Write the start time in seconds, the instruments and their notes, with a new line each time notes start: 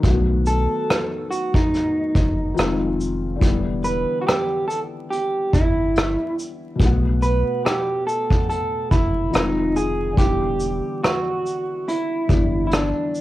0.00 sub bass B1, felt piano D#3 F#3, kick, closed hi-hat
0.05 felt piano A3 B3
0.10 felt piano F#4
0.46 clean electric guitar A4, closed hi-hat, shaker
0.90 cross-stick, closed hi-hat
1.31 clean electric guitar F#4, shaker
1.54 clean electric guitar D#4, kick
1.74 cross-stick, closed hi-hat
2.15 sub bass F#1, kick, shaker
2.54 sub bass F1, felt piano D#3 F3 G#3, closed hi-hat
2.59 felt piano C4 F4, cross-stick
3.01 shaker
3.36 felt piano D3 E3
3.41 sub bass E1, felt piano G3 B3, kick, closed hi-hat
3.46 felt piano E4
3.84 clean electric guitar B4, shaker
4.22 clean electric guitar F#4
4.27 clean electric guitar G4, cross-stick, closed hi-hat
4.68 clean electric guitar A4, closed hi-hat, shaker
5.11 clean electric guitar G4, closed hi-hat
5.53 sub bass G1, clean electric guitar E4, kick, shaker
5.96 cross-stick, closed hi-hat
6.39 shaker
6.75 felt piano B2
6.80 sub bass B1, felt piano A3 B3, kick, closed hi-hat
6.86 felt piano F#5
7.22 clean electric guitar B4, closed hi-hat, shaker
7.65 clean electric guitar G4, cross-stick, closed hi-hat
8.07 clean electric guitar A4, shaker
8.30 kick
8.49 clean electric guitar A4, closed hi-hat
8.91 sub bass F#1, clean electric guitar E4, kick, shaker
9.31 sub bass F1, felt piano D#3 F3 G#3 C4, clean electric guitar D#4, closed hi-hat
9.35 felt piano F4, cross-stick
9.76 clean electric guitar G#4, shaker
10.13 felt piano D3 E3
10.17 sub bass E1, felt piano G3 B3, clean electric guitar G4, kick, closed hi-hat
10.23 felt piano E4
10.60 shaker
11.03 clean electric guitar F#4, cross-stick, closed hi-hat
11.46 shaker
11.88 clean electric guitar E4, closed hi-hat
12.27 sub bass G1, felt piano D3 E3 G3 B3, kick, shaker
12.32 felt piano D4
12.67 clean electric guitar E4
12.71 clean electric guitar D4, cross-stick, closed hi-hat
13.15 shaker